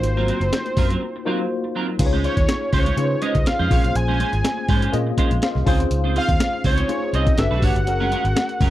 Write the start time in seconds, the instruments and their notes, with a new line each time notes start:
Already playing: tine electric piano A#3 D#4 F4 F#4 C5, analog synth lead C5
0.03 fingered electric bass G#1, muted clean electric guitar stroke, closed hi-hat, muted conga
0.17 clean electric guitar F#3 C4 F4 A#4, snare, high conga
0.28 clean electric guitar F#3 C4 F4 A#4, closed hi-hat, muted conga
0.40 fingered electric bass F#1, muted clean electric guitar stroke, closed hi-hat
0.52 muted clean electric guitar stroke, snare, closed hi-hat, muted conga, high conga
0.66 muted clean electric guitar stroke, closed hi-hat
0.77 fingered electric bass F#2, clean electric guitar F#3 C4 F4 A#4, kick, open hi-hat, muted conga, high conga, low conga
0.90 clean electric guitar F#3 C4 F4 A#4, closed hi-hat
1.02 muted clean electric guitar stroke
1.16 muted clean electric guitar stroke
1.25 clean electric guitar F#3 C4 F4 A#4, tine electric piano A#3 D#4 F4 F#4 C5
1.40 muted clean electric guitar stroke
1.64 muted clean electric guitar stroke
1.75 clean electric guitar F#3 C4 F4 A#4
1.88 muted clean electric guitar stroke
1.99 fingered electric bass C#2, tine electric piano C#4 D#4 F4 G#4 B4, muted clean electric guitar stroke, kick, closed hi-hat, crash
2.06 tine electric piano C#5
2.13 clean electric guitar G#3 C#4 F4 C5, high conga
2.24 clean electric guitar G#3 C#4 F4 C5, analog synth lead C#5, closed hi-hat
2.37 fingered electric bass D#2, muted clean electric guitar stroke, kick, closed hi-hat
2.48 muted clean electric guitar stroke, snare, closed hi-hat, high conga
2.61 muted clean electric guitar stroke
2.72 fingered electric bass C#2, clean electric guitar G#3 C#4 F4 C5, analog synth lead C#5, kick, open hi-hat, high conga, low conga
2.86 clean electric guitar G#3 C#4 F4 C5, closed hi-hat
2.96 fingered electric bass C#3, tine electric piano C#4 D#4 F4 G#4 B4, muted clean electric guitar stroke, closed hi-hat, high conga
3.04 tine electric piano C5
3.11 muted clean electric guitar stroke
3.21 clean electric guitar G#3 C#4 F4 C#5, analog synth lead D#5, closed hi-hat, muted conga
3.35 fingered electric bass C#2, muted clean electric guitar stroke, kick, closed hi-hat
3.46 analog synth lead F5, muted clean electric guitar stroke, snare, closed hi-hat, muted conga
3.59 fingered electric bass F2, clean electric guitar G#3 C#4 F4 C5, snare, low conga
3.70 fingered electric bass A#1, clean electric guitar G#3 C#4 F4 C#5, tine electric piano A#3 C4 F4 G#4 C5, analog synth lead F5, kick, open hi-hat, muted conga
3.76 tine electric piano C#4
3.84 fingered electric bass B1, muted clean electric guitar stroke, closed hi-hat
3.95 fingered electric bass A#1, analog synth lead G#5, muted clean electric guitar stroke, closed hi-hat, muted conga
4.08 clean electric guitar G#3 C#4 F4 C5, high conga
4.20 clean electric guitar G#3 C#4 F4 C5, closed hi-hat, muted conga
4.33 fingered electric bass G#1, muted clean electric guitar stroke, closed hi-hat
4.44 muted clean electric guitar stroke, snare, closed hi-hat, muted conga, high conga
4.58 muted clean electric guitar stroke
4.68 fingered electric bass G#2, clean electric guitar G#3 C#4 F4 C5, kick, open hi-hat, high conga, low conga
4.82 clean electric guitar G#3 C#4 F4 C5, closed hi-hat
4.92 fingered electric bass A#2, tine electric piano A#3 C4 F4 G#4 D#5, closed hi-hat, high conga
4.98 tine electric piano C#4
5.07 muted clean electric guitar stroke
5.17 clean electric guitar G#3 C#4 F4 C5, tine electric piano F5 C6, kick, closed hi-hat, muted conga
5.31 fingered electric bass A#1, muted clean electric guitar stroke, closed hi-hat
5.42 tine electric piano C5 F5, snare, closed hi-hat, muted conga
5.55 fingered electric bass C2, muted clean electric guitar stroke, snare, low conga
5.66 fingered electric bass C#2, clean electric guitar C4 F4 G#4 C5, tine electric piano C#4 D#4 F4 G#4 C5, kick, open hi-hat
5.79 fingered electric bass D2, muted clean electric guitar stroke, closed hi-hat
5.91 fingered electric bass C#2, muted clean electric guitar stroke, closed hi-hat, muted conga
6.04 clean electric guitar C4 F4 G#4 C5, high conga
6.15 clean electric guitar C4 F4 G#4 C5, analog synth lead F5, closed hi-hat, muted conga
6.28 fingered electric bass D#2, muted clean electric guitar stroke, kick, closed hi-hat
6.39 muted clean electric guitar stroke, snare, closed hi-hat, high conga
6.53 muted clean electric guitar stroke
6.64 fingered electric bass C#2, clean electric guitar C4 F4 G#4 C5, analog synth lead C#5, kick, open hi-hat, high conga, low conga
6.78 clean electric guitar C4 F4 G#4 C5, closed hi-hat
6.88 tine electric piano C#4 D#4 F4 G#4 C5, muted clean electric guitar stroke, closed hi-hat, muted conga, high conga
6.95 tine electric piano C#5
7.03 muted clean electric guitar stroke
7.13 fingered electric bass C2, clean electric guitar C4 F4 G#4 D#5, analog synth lead D#5, closed hi-hat
7.27 muted clean electric guitar stroke, kick, closed hi-hat
7.37 fingered electric bass G1, tine electric piano D4 F#4 G4 A4 B4, analog synth lead E5, muted clean electric guitar stroke, snare, closed hi-hat, muted conga
7.51 fingered electric bass B1, clean electric guitar A3 D4 F#4 B4, snare, low conga
7.62 fingered electric bass G#1, clean electric guitar A3 D4 F#4 C#5, analog synth lead F#5, kick, open hi-hat, muted conga
7.75 fingered electric bass G1, muted clean electric guitar stroke, closed hi-hat
7.86 fingered electric bass F#1, tine electric piano C#4 F#4 G#4 A#4, muted clean electric guitar stroke, closed hi-hat
8.00 clean electric guitar G#3 C#4 F4 A#4, snare, high conga
8.12 clean electric guitar G#3 C#4 F4 A#4, closed hi-hat
8.24 fingered electric bass G#1, muted clean electric guitar stroke, closed hi-hat
8.36 muted clean electric guitar stroke, snare, closed hi-hat, muted conga, high conga
8.49 muted clean electric guitar stroke, closed hi-hat
8.60 fingered electric bass F#1, clean electric guitar G#3 C#4 F4 A#4, kick, open hi-hat, muted conga, high conga, low conga